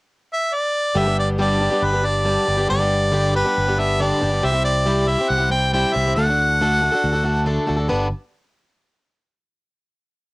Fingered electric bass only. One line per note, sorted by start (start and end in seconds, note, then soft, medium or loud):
0.95 1.67 G1 medium
1.82 2.36 G1 medium
2.48 2.66 G1 medium
2.71 3.42 G1 medium
3.58 4.11 G1 medium
4.22 4.40 G1 medium
4.44 5.15 C2 medium
5.30 5.84 C2 medium
5.96 6.13 C2 medium
6.17 6.88 D2 medium
7.04 7.57 D2 medium
7.69 7.87 D2 medium
7.91 8.11 G1 medium